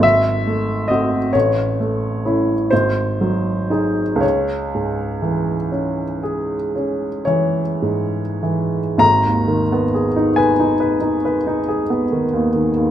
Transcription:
X:1
M:9/8
L:1/16
Q:3/8=43
K:C#m
V:1 name="Upright piano"
e4 d2 c6 ^B6 | c12 c6 | [K:G#m] a6 g12 |]
V:2 name="Upright piano"
G,,,2 A,2 [^B,F]2 A,,,2 A,2 [CE]2 G,,,2 F,2 [DG]2 | C,,2 G,,2 E,2 C2 G2 C2 E,2 G,,2 E,2 | [K:G#m] G,,, D,, D, B, G D B D B D B D G B, D, D,, D, D,, |]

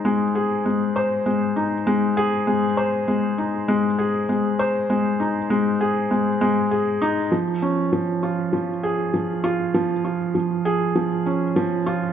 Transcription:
X:1
M:4/4
L:1/8
Q:1/4=99
K:Ab
V:1 name="Felt piano"
A, A A, c A, E A, A | A, c A, E A, A A, c | A, E A, A A, A, A E | F, D F, F F, A F, F |
F, F F, A F, D F, F |]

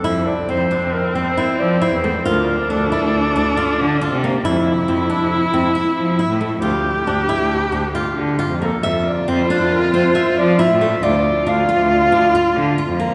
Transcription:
X:1
M:5/4
L:1/16
Q:1/4=137
K:F
V:1 name="Clarinet"
A2 d2 c4 B2 c4 d2 c4 | B4 A12- A2 z2 | z16 z4 | z16 z2 A2- |
A2 d2 c4 B2 c4 d2 e4 | d4 f12- f2 z2 |]
V:2 name="Viola"
C16- C4 | D16- D4 | E16- E4 | G16- G2 z2 |
F16- F4 | F16- F4 |]
V:3 name="Nylon-string guitar"
E4 C2 D4 C2 E4 E2 A,2 | F4 D2 E4 D2 F4 F2 B,2 | E4 C2 D4 C2 E4 E2 A,2 | F4 D2 E4 D2 F4 F2 B,2 |
e4 C2 D4 C2 e4 E2 A,2 | F4 D2 F4 D2 F4 F2 B,2 |]
V:4 name="Cello" clef=bass
F,,2 z2 F,,3 F,,2 z F,,2 z2 F,3 E,,3 | D,,2 z2 D,,3 D,,2 z D,,2 z2 D,3 C,3 | F,,2 z2 F,,3 F,,2 z F,,2 z2 F,3 A,,3 | D,,2 z2 D,,3 D,,2 z D,,2 z2 D,3 F,,3 |
F,,2 z2 F,,3 F,,2 z F,,2 z2 F,3 A,,3 | D,,2 z2 D,,3 D,,2 z D,,2 z2 D,3 F,,3 |]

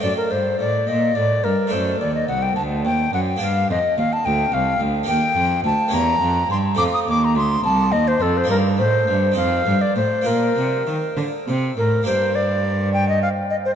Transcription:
X:1
M:6/8
L:1/16
Q:3/8=70
K:Gm
V:1 name="Flute"
d B c2 d2 e2 d2 B2 | c2 d e ^f g a2 g2 f2 | f2 e2 f a g2 f2 z2 | [K:Bb] g4 a2 b4 c'2 |
d' e' d' b c'2 a2 e c A c | B2 c4 f3 d c2 | B6 z4 B2 | [K:Gm] c2 d4 g e f2 e c |]
V:2 name="Harpsichord"
[A,DA]12 | [A,DA]12 | [B,DG]12 | [K:Bb] [B,EG]6 [B,^CG]6 |
[A,CF]12 | [B,EB]6 [CEA]6 | [B,DF]12 | [K:Gm] [B,DG]12 |]
V:3 name="Harpsichord" clef=bass
^F,,2 G,,2 A,,2 B,,2 A,,2 G,,2 | ^F,,2 E,,2 C,,2 D,,2 E,,2 F,,2 | G,,2 F,,2 E,,2 D,,2 C,,2 D,,2 | [K:Bb] E,,2 F,,2 D,,2 =E,,2 F,,2 G,,2 |
F,,2 E,,2 D,,2 C,,2 E,,2 F,,2 | G,,2 A,,2 G,,2 F,,2 G,,2 A,,2 | B,,2 C,2 E,2 D,2 C,2 A,,2 | [K:Gm] G,,12 |]
V:4 name="Cello" clef=bass
^F,,2 G,,2 A,,2 B,,2 A,,2 G,,2 | ^F,,2 E,,2 C,,2 D,,2 E,,2 F,,2 | G,,2 F,,2 E,,2 D,,2 C,,2 D,,2 | [K:Bb] E,,2 F,,2 D,,2 =E,,2 F,,2 G,,2 |
F,,2 E,,2 D,,2 C,,2 E,,2 F,,2 | G,,2 A,,2 G,,2 F,,2 G,,2 A,,2 | B,,2 C,2 E,2 D,2 C,2 A,,2 | [K:Gm] G,,12 |]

